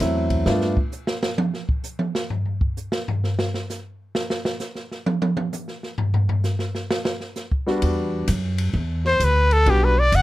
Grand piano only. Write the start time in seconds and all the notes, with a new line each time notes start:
0.00 F#3 A3 C4 E4
0.46 A3 B3 D4 F4
7.66 G3 B3 D4 F#4
9.67 G3 B3 D4 F#4